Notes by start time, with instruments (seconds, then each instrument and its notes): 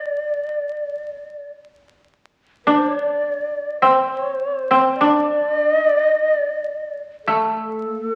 Already playing: shakuhachi D5
2.65 koto D4, shakuhachi C5
2.85 shakuhachi C#5
2.98 shakuhachi D5
3.81 koto C4, shakuhachi C5
4.71 koto C4
4.96 shakuhachi D5
5.01 koto D4
5.70 koto D#4, shakuhachi D#5
5.85 koto D4, shakuhachi D5
6.11 koto D#4, shakuhachi D#5
6.26 koto D4, shakuhachi D5
7.24 koto A3, shakuhachi A4
7.85 koto A#3
8.01 koto A3